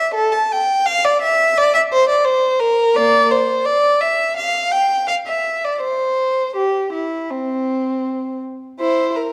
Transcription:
0.00 0.12 E5 medium
0.14 0.31 A4 loud
0.32 0.49 A5 loud
0.52 0.86 G5 loud
0.86 1.03 F5 loud
1.05 1.21 D5 loud
1.22 1.55 E5 loud
1.58 1.74 D5 loud
1.75 1.81 E5 loud
1.93 2.09 C5 loud
2.09 2.26 D5 loud
2.25 2.60 C5 loud
2.60 2.95 A#4 loud
2.96 3.28 A#3 medium
2.96 3.31 D5 loud
3.31 3.66 C5 loud
3.65 4.01 D5 loud
4.01 4.37 E5 loud
4.37 4.72 F5 loud
4.71 5.08 G5 loud
5.08 5.15 F5 medium
5.27 5.63 E5 medium
5.65 5.83 D5 medium
5.81 6.54 C5 medium
6.56 6.92 G4 medium
6.93 7.29 E4 medium
7.30 8.42 C4 medium
8.80 9.13 E4 medium
8.80 9.13 C5 medium
9.16 9.33 A#4 medium

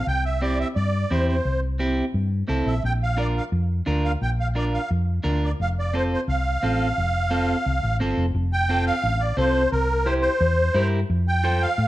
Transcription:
0.07 0.63 C2 medium
0.07 0.24 G5 medium
0.25 0.41 E5 medium
0.41 0.66 C4 medium
0.41 0.66 E4 soft
0.41 0.67 G4 medium
0.41 0.58 D5 medium
0.60 0.68 E5 medium
0.75 1.04 G2 medium
0.75 1.12 D5 medium
1.11 1.39 E2 medium
1.11 1.35 C4 medium
1.11 1.36 E4 medium
1.11 1.36 G4 medium
1.11 1.26 C5 medium
1.28 1.60 C5 medium
1.45 2.01 C2 medium
1.79 2.04 C4 medium
1.79 2.04 E4 medium
1.79 2.05 G4 medium
2.14 2.42 G2 medium
2.48 2.65 C2 medium
2.48 2.73 C4 medium
2.48 2.73 E4 medium
2.48 2.74 A4 medium
2.66 2.82 A#1 medium
2.66 2.83 E5 medium
2.84 3.39 A#1 medium
2.84 2.93 G5 medium
3.03 3.20 F5 medium
3.17 3.42 D4 medium
3.17 3.42 F4 medium
3.17 3.42 A#4 medium
3.17 3.27 D5 medium
3.37 3.45 F5 medium
3.52 3.80 F2 medium
3.86 4.15 D2 medium
3.86 4.11 D4 medium
3.86 4.11 F4 medium
3.86 4.12 A#4 medium
4.05 4.12 F5 medium
4.21 4.77 A#1 medium
4.21 4.30 G5 medium
4.40 4.48 F5 medium
4.55 4.80 D4 medium
4.55 4.80 F4 medium
4.55 4.80 A#4 medium
4.55 4.65 D5 medium
4.74 4.90 F5 medium
4.91 5.18 F2 medium
5.24 5.52 D2 medium
5.24 5.49 D4 medium
5.24 5.49 F4 medium
5.24 5.49 A#4 medium
5.45 5.52 D5 medium
5.60 6.15 F1 medium
5.60 5.69 F5 loud
5.79 5.96 D5 medium
5.94 6.18 C4 medium
5.94 6.18 F4 medium
5.94 6.18 A4 medium
5.94 6.04 C5 medium
6.14 6.21 C5 medium
6.28 6.56 C2 medium
6.28 7.97 F5 medium
6.63 6.91 A1 medium
6.63 6.87 C4 medium
6.63 6.87 F4 medium
6.63 6.88 A4 medium
6.98 7.53 F1 medium
7.31 7.56 C4 medium
7.31 7.55 F4 medium
7.31 7.56 A4 medium
7.66 7.80 C2 medium
7.83 7.99 A1 medium
8.00 8.16 G1 medium
8.00 8.25 C4 medium
8.00 8.25 F4 medium
8.00 8.25 A4 medium
8.17 8.33 F1 medium
8.34 8.90 F1 loud
8.53 8.85 G5 loud
8.69 8.94 C4 medium
8.69 8.94 F4 medium
8.69 8.94 A4 medium
8.87 9.22 F5 loud
9.03 9.31 A1 medium
9.21 9.37 D5 medium
9.37 9.65 C2 medium
9.37 9.62 C4 medium
9.37 9.62 F4 medium
9.37 9.62 A4 medium
9.37 9.70 C5 medium
9.72 10.27 C2 medium
9.72 10.08 A#4 medium
10.06 10.31 E4 medium
10.06 10.31 G4 medium
10.06 10.14 C5 medium
10.06 10.31 C5 medium
10.22 10.88 C5 medium
10.41 10.68 E2 medium
10.74 11.02 G2 medium
10.74 10.99 E4 medium
10.74 11.00 G4 medium
10.74 11.00 A#4 medium
11.10 11.65 F2 loud
11.28 11.63 G5 loud
11.44 11.68 F4 medium
11.44 11.68 A4 medium
11.44 11.68 C5 medium
11.62 11.88 F5 loud
11.78 11.88 A2 medium

